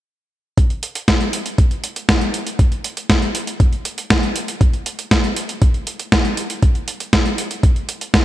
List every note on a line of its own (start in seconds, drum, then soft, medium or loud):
0.58 kick loud
0.58 closed hi-hat medium
0.70 closed hi-hat soft
0.83 closed hi-hat medium
0.95 closed hi-hat medium
1.08 kick loud
1.08 snare loud
1.08 closed hi-hat medium
1.21 closed hi-hat soft
1.33 closed hi-hat medium
1.46 closed hi-hat soft
1.58 kick loud
1.58 closed hi-hat soft
1.71 closed hi-hat soft
1.84 closed hi-hat medium
1.96 closed hi-hat medium
2.09 kick loud
2.09 snare loud
2.09 closed hi-hat medium
2.21 closed hi-hat soft
2.34 closed hi-hat medium
2.47 closed hi-hat medium
2.59 kick loud
2.59 closed hi-hat soft
2.72 closed hi-hat soft
2.84 closed hi-hat medium
2.97 closed hi-hat medium
3.10 kick loud
3.10 snare loud
3.10 closed hi-hat medium
3.22 closed hi-hat soft
3.35 closed hi-hat medium
3.47 closed hi-hat soft
3.60 kick loud
3.60 closed hi-hat soft
3.73 closed hi-hat soft
3.85 closed hi-hat medium
3.98 closed hi-hat soft
4.10 kick loud
4.10 snare loud
4.10 closed hi-hat soft
4.23 closed hi-hat soft
4.36 closed hi-hat medium
4.48 closed hi-hat medium
4.61 kick loud
4.61 closed hi-hat soft
4.73 closed hi-hat soft
4.86 closed hi-hat medium
4.99 closed hi-hat soft
5.11 kick loud
5.11 snare loud
5.11 closed hi-hat soft
5.24 closed hi-hat soft
5.36 closed hi-hat medium
5.49 closed hi-hat soft
5.62 kick loud
5.62 closed hi-hat soft
5.74 closed hi-hat soft
5.87 closed hi-hat medium
5.99 closed hi-hat soft
6.12 kick loud
6.12 snare loud
6.12 closed hi-hat soft
6.25 closed hi-hat soft
6.37 closed hi-hat medium
6.50 closed hi-hat soft
6.62 kick loud
6.62 closed hi-hat soft
6.75 closed hi-hat soft
6.88 closed hi-hat medium
7.00 closed hi-hat soft
7.13 kick loud
7.13 snare loud
7.13 closed hi-hat soft
7.26 closed hi-hat soft
7.38 closed hi-hat medium
7.51 closed hi-hat soft
7.63 kick loud
7.63 closed hi-hat soft
7.76 closed hi-hat soft
7.89 closed hi-hat medium
8.01 closed hi-hat soft
8.14 kick loud
8.14 snare loud
8.14 closed hi-hat soft